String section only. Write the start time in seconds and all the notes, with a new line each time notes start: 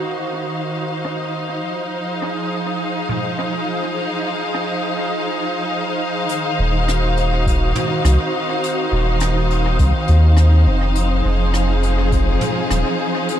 Already playing: D#3 D#4 F#4 C5 F5
1.64 F3
2.07 G#4
6.29 D#3
6.75 F#4
10.96 F3
11.15 G#4